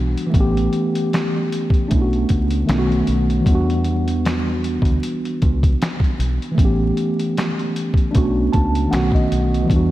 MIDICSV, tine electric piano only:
0, 0, Header, 1, 2, 480
1, 0, Start_track
1, 0, Tempo, 779221
1, 214, Time_signature, 4, 2, 24, 8
1, 6106, End_track
2, 0, Start_track
2, 0, Title_t, "Tine electric piano"
2, 0, Program_c, 0, 4
2, 0, Control_c, 0, 64, 127
2, 0, Note_on_c, 0, 52, 49
2, 0, Note_on_c, 0, 55, 56
2, 0, Note_on_c, 0, 59, 53
2, 0, Note_on_c, 0, 62, 46
2, 0, Note_on_c, 0, 66, 75
2, 158, Note_off_c, 0, 52, 0
2, 166, Note_on_c, 0, 52, 80
2, 186, Note_on_c, 0, 57, 73
2, 202, Note_off_c, 0, 59, 0
2, 207, Note_off_c, 0, 55, 0
2, 210, Note_on_c, 0, 59, 72
2, 218, Note_off_c, 0, 62, 0
2, 221, Control_c, 0, 64, 0
2, 223, Note_off_c, 0, 66, 0
2, 228, Note_on_c, 0, 61, 57
2, 249, Note_on_c, 0, 67, 98
2, 312, Control_c, 0, 64, 127
2, 1130, Note_off_c, 0, 52, 0
2, 1140, Note_off_c, 0, 57, 0
2, 1152, Note_off_c, 0, 59, 0
2, 1160, Note_on_c, 0, 62, 69
2, 1162, Note_off_c, 0, 61, 0
2, 1169, Note_on_c, 0, 57, 70
2, 1172, Note_off_c, 0, 67, 0
2, 1180, Note_on_c, 0, 59, 68
2, 1181, Control_c, 0, 64, 0
2, 1190, Note_on_c, 0, 61, 60
2, 1201, Note_on_c, 0, 64, 68
2, 1233, Note_off_c, 0, 64, 0
2, 1241, Note_on_c, 0, 66, 85
2, 1285, Control_c, 0, 64, 127
2, 1635, Note_on_c, 0, 51, 75
2, 1637, Note_off_c, 0, 57, 0
2, 1644, Note_on_c, 0, 57, 73
2, 1647, Note_off_c, 0, 59, 0
2, 1647, Note_off_c, 0, 62, 0
2, 1655, Note_on_c, 0, 59, 63
2, 1659, Note_off_c, 0, 61, 0
2, 1661, Control_c, 0, 64, 0
2, 1667, Note_on_c, 0, 61, 68
2, 1676, Note_on_c, 0, 64, 63
2, 1687, Note_off_c, 0, 66, 0
2, 1710, Note_off_c, 0, 64, 0
2, 1716, Note_on_c, 0, 66, 98
2, 1771, Control_c, 0, 64, 127
2, 2103, Note_on_c, 0, 52, 71
2, 2122, Note_on_c, 0, 55, 78
2, 2124, Note_off_c, 0, 51, 0
2, 2129, Note_off_c, 0, 57, 0
2, 2134, Note_off_c, 0, 59, 0
2, 2140, Note_off_c, 0, 61, 0
2, 2141, Control_c, 0, 64, 0
2, 2144, Note_on_c, 0, 59, 77
2, 2163, Note_on_c, 0, 62, 67
2, 2165, Note_off_c, 0, 66, 0
2, 2185, Note_on_c, 0, 66, 92
2, 2234, Control_c, 0, 64, 127
2, 4006, Note_off_c, 0, 52, 0
2, 4014, Note_on_c, 0, 52, 77
2, 4023, Note_off_c, 0, 55, 0
2, 4033, Note_on_c, 0, 57, 72
2, 4034, Note_off_c, 0, 59, 0
2, 4044, Note_off_c, 0, 62, 0
2, 4054, Note_off_c, 0, 66, 0
2, 4055, Note_on_c, 0, 59, 66
2, 4061, Control_c, 0, 64, 0
2, 4074, Note_on_c, 0, 61, 70
2, 4095, Note_on_c, 0, 67, 75
2, 4157, Control_c, 0, 64, 127
2, 4974, Note_off_c, 0, 52, 0
2, 4984, Note_off_c, 0, 57, 0
2, 4995, Note_off_c, 0, 59, 0
2, 4996, Note_on_c, 0, 62, 77
2, 5005, Note_off_c, 0, 61, 0
2, 5005, Note_on_c, 0, 57, 69
2, 5015, Note_off_c, 0, 67, 0
2, 5016, Note_on_c, 0, 59, 68
2, 5023, Control_c, 0, 64, 0
2, 5025, Note_on_c, 0, 61, 65
2, 5037, Note_on_c, 0, 66, 92
2, 5118, Control_c, 0, 64, 127
2, 5251, Note_on_c, 0, 81, 68
2, 5468, Note_on_c, 0, 51, 76
2, 5471, Note_off_c, 0, 57, 0
2, 5475, Note_off_c, 0, 81, 0
2, 5478, Note_on_c, 0, 57, 65
2, 5481, Note_off_c, 0, 59, 0
2, 5485, Note_off_c, 0, 62, 0
2, 5488, Note_on_c, 0, 59, 70
2, 5488, Note_on_c, 0, 78, 67
2, 5490, Note_off_c, 0, 61, 0
2, 5498, Note_on_c, 0, 61, 65
2, 5501, Note_off_c, 0, 66, 0
2, 5502, Control_c, 0, 64, 0
2, 5509, Note_on_c, 0, 66, 92
2, 5616, Control_c, 0, 64, 127
2, 5617, Note_off_c, 0, 78, 0
2, 5635, Note_on_c, 0, 75, 68
2, 5929, Note_on_c, 0, 52, 87
2, 5950, Note_on_c, 0, 55, 68
2, 5952, Note_off_c, 0, 75, 0
2, 5961, Note_off_c, 0, 51, 0
2, 5963, Note_off_c, 0, 59, 0
2, 5966, Note_off_c, 0, 57, 0
2, 5970, Note_on_c, 0, 59, 69
2, 5976, Note_off_c, 0, 61, 0
2, 5981, Note_off_c, 0, 66, 0
2, 5981, Control_c, 0, 64, 0
2, 5991, Note_on_c, 0, 62, 67
2, 6013, Note_on_c, 0, 66, 79
2, 6096, Control_c, 0, 64, 127
2, 6106, Note_off_c, 0, 52, 0
2, 6106, Note_off_c, 0, 55, 0
2, 6106, Note_off_c, 0, 59, 0
2, 6106, Note_off_c, 0, 62, 0
2, 6106, Note_off_c, 0, 66, 0
2, 6106, End_track
0, 0, End_of_file